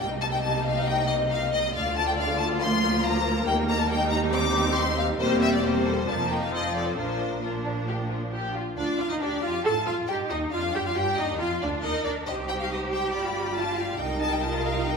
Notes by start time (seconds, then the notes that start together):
Already playing: G3
0.00 C2 C3 A#3 D#4 D#5 G5
0.21 A5
0.33 G5
0.43 A5
0.65 F5
0.86 G5
1.08 D#5
1.30 F5
1.52 D#5
1.73 D2 D3 A3 F4 D5 F5
1.97 A5
2.07 G5
2.17 F5
2.39 A5
2.60 F3 A#3 A#4 C6
3.04 A#5
3.46 D#2 G3 D#4 G5
3.68 A#5
3.79 A5
3.90 G5
4.11 A#5
4.32 C4 G4 D6
4.76 C6
4.98 F5
5.18 E1 E2 G3 A#3 C4 G4 C5
5.42 E5
5.54 D5
5.63 G3 A#3 C4 G4 C5
5.86 A4
6.06 F1 F2 F3 A#3 D4 A#4 A5
6.29 D#4 G5
6.43 F5
6.51 F1 F2 F3 C4 F4 A4 D#5
6.76 D5
6.88 C5
6.96 A#1 A#2 F3 D4 F4 A#4 C5
7.42 F3 D4 F4 A#4
7.65 D4
7.88 G4
8.10 F4
8.32 G4
8.55 F4
8.77 D2 D4 F4 D5
8.98 F2 F4 F5
9.10 D#2 D#4 D#5
9.21 D2 D4 G4 D5
9.42 F2 F4 F5
9.64 A2 F4 A4 A5
9.86 F2 F4 F5
10.07 G2 D#4 G4 G5
10.30 D#2 D#4 D#5
10.52 F2 D4 F4 F5
10.75 G2 G4 G5
10.86 F2 F4 F5
10.96 G2 D4 G4 G5
11.18 D#2 D#4 D#5
11.39 F2 F4 F5
11.61 D2 D4 D5
11.81 D#2 D#4 A#4 D#5
12.04 D2 D4 D5
12.26 C2 G3 D#4 G4 C5 D#5
12.49 G5
12.61 F5
12.71 D#5
12.92 G5
13.14 G1 F4 D5 B5
13.57 F4 A5
13.79 F5
13.99 C2 D#4 A#4 D#5 G5
14.20 A5
14.32 G5
14.43 F4 A5
14.64 F5
14.85 D#4 G5